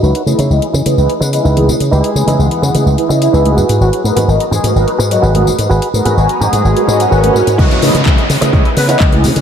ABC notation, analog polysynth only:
X:1
M:4/4
L:1/16
Q:1/4=127
K:C#dor
V:1 name="Analog polysynth"
z2 [EGBd] z [EGBd] z2 [EGBd] [EGBd] z2 [EGBd] z [EGBd] z2 | z2 [EGBd]2 [E,GBf]3 [EGBd] z [EGBd]2 [EGBe]2 [EGBf] z2 | z2 [FABd] z [FABd] z2 [FABd] [FABd] z2 [FABd] z [FABd] z2 | z2 [FABd]2 [FBga]3 [FABd] z [FABd]2 [FABf]2 [FABg] z2 |
z2 [EGBd] z [EGBd] z2 [EGBd] [EGBd] z2 [EGBd] z [EGBd] z2 |]